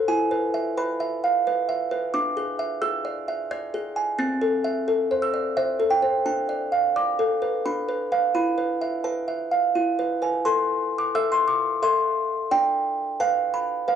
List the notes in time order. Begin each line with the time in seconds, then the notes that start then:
0.08 E4 G#5
0.31 B4
0.54 E5
0.77 B4 B5
1.00 E5
1.24 F5
1.47 B4
1.69 E5
1.91 B4
2.14 D4 D6
2.37 G#4
2.59 E5
2.82 G#4 E6
3.05 D5
3.28 E5
3.51 D5 G#6
3.74 G#4
3.96 G#5
4.19 C4 A6
4.41 A4
4.64 E5
4.88 A4
5.11 C5
5.22 E6
5.34 D5
5.57 C5 E5
5.80 A4
5.90 G5
6.02 C5
6.26 D4 A5
6.49 D5
6.72 F5
6.96 D5 D6
7.19 A4
7.42 B4
7.66 D4 B5
7.89 B4
8.12 B4 F5
8.35 E4 B5
8.58 B4
8.81 E5
9.04 B4 A5
9.28 E5
9.51 F5
9.75 E4
9.99 B4
10.22 B4 G#5
10.45 A4 A5 C6
10.98 D6
11.15 A4 E5 E6
11.32 C6
11.48 D6
11.82 A4 E5 C6
12.51 D4 D5 G5
13.20 B4 F5 A5
13.54 B5
13.88 B4 F5